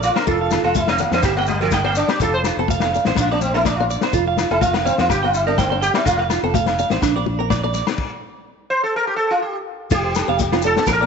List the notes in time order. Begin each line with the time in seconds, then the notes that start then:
0.03 F4 D5, snare, muted conga, shekere
0.16 C4 A#4 C5, snare, low agogo
0.27 F1 A3 F4 A4, kick, muted conga, shekere
0.41 F5
0.51 F4, snare, muted conga, low conga, low agogo, shekere
0.63 F1 C4 F4 A4
0.75 E4 F5, kick, snare, high conga, shekere
0.87 C4 F5, snare, low agogo
0.98 A3 D4 F5, low conga, shekere
1.11 F2 C4 C5, snare
1.23 G1 A#3 G4, kick, snare, muted conga, low agogo, shekere
1.37 A3 C4 G5
1.47 G3, high conga, shekere
1.60 F3 C4 A#4, snare
1.71 G3 G5, kick, snare, high conga, low agogo, shekere
1.84 A#3 D4 G5
1.95 D4 D5, snare, muted conga, shekere
2.08 C4 G4 D5, snare, low agogo
2.20 F1 A3 F4 A4, kick, muted conga, shekere
2.34 C5
2.44 F4, snare, muted conga, low agogo, shekere
2.57 F1 C4 A4
2.68 F5, kick, high conga, shekere
2.80 F5, snare, low agogo
2.84 C4
2.93 D4 F5, shekere
3.05 A1 C4 C5, snare
3.15 A#1 D4, kick, snare, low agogo, shekere
3.20 F4
3.31 C4 D4 D5
3.41 C4, high conga, shekere
3.53 C4 E4 A#4, snare
3.65 D4 D5, kick, snare, high conga, low agogo, shekere
3.77 D4 F4
3.90 D5, muted conga, shekere
4.01 C4 C5, snare, low agogo
4.13 F1 A3 F4, kick, muted conga, shekere
4.28 F5
4.37 F4, snare, low conga, low agogo, shekere
4.51 F1 E4 A4, muted steel-string acoustic guitar stroke
4.61 F4 F5, kick, snare, high conga, shekere
4.73 A3 C4 F5, snare, low agogo
4.85 C4 D4 F5, low conga, shekere
4.98 F2 C4 F4 C5, snare
5.09 G1 G4, kick, snare, muted conga, low agogo, shekere
5.23 C4 F4 G5
5.34 E4, shekere
5.46 C4 D4 A#4
5.58 C4 G5, kick, snare, high conga, low agogo, shekere
5.70 D4 G5
5.81 G4 G5, muted conga, shekere
5.94 C4 E4 D5, snare, low agogo
6.05 F1 A3 F4, kick, muted conga, shekere
6.17 A3 F5
6.30 F4, snare, muted conga, low agogo, shekere
6.43 F1 C4 A4
6.53 F5, kick, snare, high conga, shekere
6.66 C4 F5, snare, low agogo
6.79 D4 F5, shekere
6.90 A1 C4 C5, snare
7.02 A#1 D4, kick, snare, low agogo, shekere
7.16 C4 D5
7.26 high conga
7.39 C4 A#4
7.50 D5, kick, snare, high conga, low agogo, shekere
7.64 D4 D5
7.74 D5, snare, muted conga, shekere
7.87 C4, snare, low agogo
7.98 kick, crash
8.70 C5
8.83 A4
8.96 A#4
9.07 G4
9.16 A4
9.31 F4
9.42 G4
9.91 F1 A3 F4 G4, kick, crash, muted conga, shekere
10.04 C5
10.15 A4, snare, muted conga, low agogo, shekere
10.28 F1 C4 F5
10.39 kick, snare, high conga, shekere
10.52 C4 F4, snare, low agogo
10.62 D4 A4, shekere
10.66 A4
10.76 C4, snare
10.86 A#1 A#4, kick, snare, muted conga, high conga, low agogo, shekere
10.92 A#4
11.01 C4 D5